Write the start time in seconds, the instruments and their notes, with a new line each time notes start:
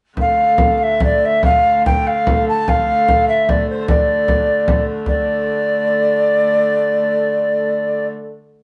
0.17 hurdy-gurdy D3 A3, recorder F5, frame drum
0.38 frame drum
0.58 frame drum
0.77 recorder F5
0.83 recorder E5
1.00 recorder D5, frame drum
1.25 recorder E5
1.43 recorder F5, frame drum
1.65 frame drum
1.85 recorder G5, frame drum
2.07 recorder F5
2.27 frame drum
2.48 recorder A5
2.68 recorder F5, frame drum
2.88 frame drum
3.08 frame drum
3.28 recorder E5
3.49 recorder D5, frame drum
3.70 recorder C5
3.88 recorder D5, frame drum
4.28 frame drum
4.68 frame drum
5.05 hurdy-gurdy D3 A3, recorder D5, frame drum